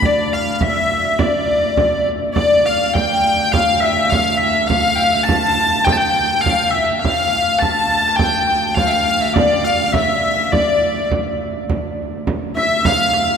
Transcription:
Already playing: D2
0.02 D5, frame drum
0.33 F5
0.61 E5, frame drum
0.91 frame drum
1.19 D5, frame drum
1.49 frame drum
1.77 frame drum
2.06 frame drum
2.34 D2 D5, frame drum
2.66 F5
2.94 G5, frame drum
3.23 frame drum
3.42 G5
3.52 F5, frame drum
3.80 E5
3.86 E5
4.10 F5, frame drum
4.37 E5
4.42 E5, frame drum
4.67 F5, frame drum
4.95 G5
5.04 F5
5.12 E5
5.22 F5 A5
5.29 A5, frame drum
5.59 frame drum
5.85 G5, frame drum
5.93 A5
5.98 G5
6.41 F5
6.46 F5, frame drum
6.71 E5
7.00 D2 F5
7.04 F5, frame drum
7.59 A5, frame drum
7.91 frame drum
8.07 A5
8.16 G5, frame drum
8.21 G5
8.47 G5
8.75 F5, frame drum
8.87 E5
8.93 F5
9.07 frame drum
9.21 E5
9.34 D5, frame drum
9.64 F5
9.93 E5, frame drum
10.52 D5, frame drum
10.82 frame drum
11.11 frame drum
11.41 frame drum
11.70 D2, frame drum
12.27 frame drum
12.56 E5, frame drum
12.85 F5, frame drum
13.14 F5

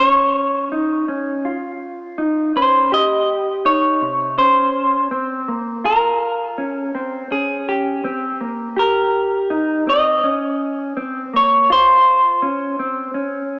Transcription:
0.00 C#4 C#5
0.72 D#4
1.08 C#4
1.45 F4
2.18 D#4
2.56 C#4 C5
2.92 G4 D#5
3.65 D#4 C#5
4.01 C3
4.37 C#4 C5
5.11 C4
5.48 A#3
5.84 F4 A#4
6.58 C#4
6.86 G#4
6.95 C4
7.31 C#4 G#4
7.69 G4
8.04 C4
8.41 A#3
8.77 G4 A#4
9.50 D#4
9.87 C4 D#5
10.23 C#4
10.97 C4
11.33 A#3 C#5
11.70 F4 C5
12.42 C#4
12.79 C4
13.14 C#4

